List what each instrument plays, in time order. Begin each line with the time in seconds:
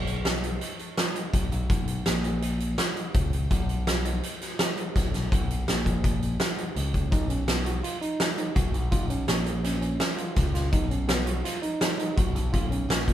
Already playing: picked electric bass B1
0.07 closed hi-hat
0.25 snare, closed hi-hat
0.44 closed hi-hat
0.61 closed hi-hat
0.79 closed hi-hat
0.97 snare, closed hi-hat
1.15 closed hi-hat
1.33 picked electric bass B1, kick, closed hi-hat
1.51 picked electric bass B1, closed hi-hat
1.70 picked electric bass B1, kick, closed hi-hat
1.88 closed hi-hat
2.06 picked electric bass A#1, snare, closed hi-hat
2.24 closed hi-hat
2.42 closed hi-hat
2.60 closed hi-hat
2.78 snare, closed hi-hat
2.96 closed hi-hat
3.14 picked electric bass C#2, kick, closed hi-hat
3.33 closed hi-hat
3.51 picked electric bass B1, kick, closed hi-hat
3.69 closed hi-hat
3.87 snare, closed hi-hat
4.05 closed hi-hat
4.23 closed hi-hat
4.41 snare, closed hi-hat
4.59 snare, closed hi-hat
4.77 closed hi-hat
4.96 picked electric bass B1, kick, snare, closed hi-hat
5.14 picked electric bass B1, snare, closed hi-hat
5.32 picked electric bass B1, kick, closed hi-hat
5.50 closed hi-hat
5.68 picked electric bass A#1, snare, closed hi-hat
5.86 kick, closed hi-hat
6.04 kick, closed hi-hat
6.22 closed hi-hat
6.40 snare, closed hi-hat
6.58 closed hi-hat
6.76 picked electric bass C#2, closed hi-hat
6.94 kick, closed hi-hat
7.12 picked electric bass B1, tine electric piano D#4, kick, closed hi-hat
7.29 tine electric piano C#4, closed hi-hat
7.48 tine electric piano B3, snare, closed hi-hat
7.66 tine electric piano F#4, closed hi-hat
7.83 tine electric piano F4, closed hi-hat
8.02 tine electric piano D#4, closed hi-hat
8.20 snare, closed hi-hat
8.38 tine electric piano D#4, closed hi-hat
8.56 picked electric bass B1, tine electric piano F#4, kick, closed hi-hat
8.74 picked electric bass B1, closed hi-hat
8.92 picked electric bass B1, tine electric piano F4, kick, closed hi-hat
9.10 tine electric piano C#4, closed hi-hat
9.28 picked electric bass A#1, snare, closed hi-hat
9.46 tine electric piano A#3, closed hi-hat
9.64 tine electric piano C#4, snare, closed hi-hat
9.81 tine electric piano C#4, closed hi-hat
10.00 snare, closed hi-hat
10.18 tine electric piano F4, closed hi-hat
10.36 picked electric bass C#2, kick, snare, closed hi-hat
10.54 tine electric piano F4, snare, closed hi-hat
10.72 picked electric bass B1, tine electric piano D#4, kick, closed hi-hat
10.90 tine electric piano C#4, closed hi-hat
11.08 tine electric piano B3, snare, closed hi-hat
11.26 tine electric piano F#4, closed hi-hat
11.44 tine electric piano F4, snare, closed hi-hat
11.63 tine electric piano D#4, closed hi-hat
11.81 snare, closed hi-hat
11.98 tine electric piano D#4, closed hi-hat
12.17 picked electric bass B1, tine electric piano F#4, kick, closed hi-hat
12.35 picked electric bass B1, closed hi-hat
12.53 picked electric bass B1, tine electric piano F4, kick, closed hi-hat
12.71 tine electric piano C#4, closed hi-hat
12.89 picked electric bass A#1, snare, closed hi-hat
13.07 tine electric piano A#3, kick, closed hi-hat